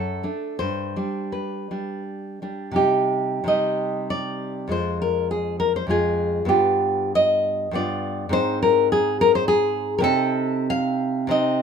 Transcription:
nylon-string guitar
Already playing: F#2 A4
0.23 A3 D4
0.59 G2 C5
0.96 G3 D4
1.32 B4
1.71 G3 D4
2.42 G3 D4
2.71 C3 G3 D#4
2.76 G4
3.44 C3 G3 D#4
3.48 D#5
4.10 D5
4.68 F2 G#3 F4
4.72 C5
5.02 A#4
5.31 G#4
5.60 A#4
5.76 C5
5.87 F2 G#3 F4 G#4
6.45 G2 B3 F4 G4
7.15 D#5
7.71 G2 B3 F4 D5
8.29 G#2 C4 D#4 C5
8.62 A#4
8.92 G#4
9.21 A#4
9.35 C5
9.48 G#4
9.98 C3 C4 A#4
10.03 D#4 A4
10.70 F5
11.27 C3 C4 D#4 D#5

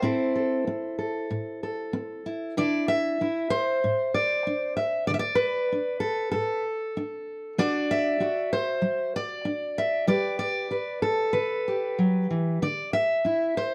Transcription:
steel-string acoustic guitar
Already playing: C5
0.02 A2 C4 E4 A4
0.36 A4
0.67 C4
0.99 A4
1.30 A2
1.63 A4
1.93 C4
2.26 E4
2.57 D3 D4 E4 D5
2.88 E5
3.21 D4 E4
3.50 C5
3.84 A2
4.14 D5
4.47 D4
4.77 E5
5.07 D3 D5
5.14 E5
5.19 D5
5.35 B4
5.72 D4
6.00 A4
6.32 A2 A4
6.97 D4
7.58 B3 D4 F#4 D5
7.91 E5
8.20 D4 F#4
8.53 C5
8.82 F#3
9.16 D5
9.45 D4
9.78 E5
10.07 G3 G4 B4 D5
10.39 D5
10.71 G4 B4
11.02 A4
11.33 D3 B4
11.68 G4
11.99 F#3
12.30 E3
12.62 D3 D5
12.93 E5
13.25 D4 E4
13.57 C5

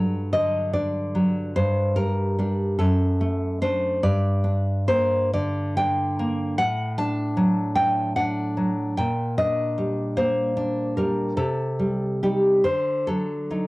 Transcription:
nylon-string guitar
Already playing: G2 F#3 D4 A4
0.33 D3 D#5
0.73 D4 D5
1.15 F#3
1.56 G2 C5
1.96 G3 A#4
2.39 G3 D4
2.79 F#2 A4
3.21 A3
3.62 A3 D4 C5
4.03 G2 D5
4.44 D4
4.88 A#3 C5
5.34 D3 D5
5.77 D4 G5
6.19 A#3
6.58 A2 F#5
6.98 D4 A5
7.37 F#3
7.75 A3 G5
8.16 D4 F#5
8.57 F#3
8.97 A#2 G5
9.38 D4 D#5
9.78 G3
10.17 A#3 C5
10.57 D4
10.97 G3 A#4
11.37 C3 A4
11.79 G3
12.23 G3 D#4 G4
12.64 D3 C5
13.07 F#3 A4
13.51 F#3 D#4

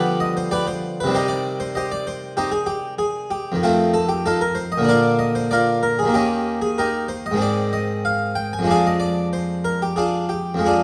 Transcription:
harpsichord
Already playing: D3 F3 G3 B3 G4 B4 D5
0.20 D#5
0.37 C5
0.51 G4 B4 D5
0.67 C5
1.00 C3 B4
1.06 D#3 G3
1.10 C4 C5
1.15 D#4 G4
1.28 D5
1.60 C5
1.75 G4 C5 D#5
1.92 D5
2.07 C5
2.37 C4 D#4 G4
2.52 G#4
2.66 G4
2.99 G#4
3.31 G4
3.52 F2 D#3
3.63 A3 C4 F4
3.94 A4
4.09 G4
4.26 D#4 F4 A4
4.41 A#4
4.55 C5
4.72 D#5
4.78 A#2 D3
4.83 A#3 D4
4.88 F4 A#4 D5
5.19 D#5
5.35 C5
5.51 F4 A#4 D5
5.83 A#4
5.99 G#4
6.03 D#2 D#3
6.08 A#3
6.14 C#4 D#4 G4
6.62 G#4
6.78 D#4 G4 A#4
7.08 C5
7.26 D#5
7.31 G#2 D#3
7.36 G#3 C4
7.42 D5
7.73 D#5
8.05 F5
8.35 G5
8.53 G#5
8.59 F2 F3
8.64 G#3 D4
8.71 G#4 D5 F5
8.87 D#5
9.00 D5
9.33 C5
9.65 A#4
9.82 G4
9.96 D4 F4 G#4
10.29 G4
10.54 F2 F3
10.59 G#3
10.65 D4 F4 G#4

